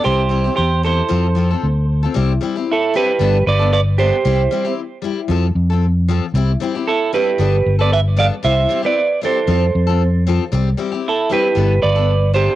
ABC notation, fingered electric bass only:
X:1
M:4/4
L:1/8
Q:"Swing 16ths" 1/4=115
K:C
V:1 name="Fingered electric bass" clef=bass
C,,2 E,,2 F,,2 D,,2 | C,, z3 G,,, G,,,3 | C,, z3 F,, F,,3 | C,, z3 G,,, G,,,3 |
C,, z3 F,, F,,3 | C,, z3 G,,, G,,,3 |]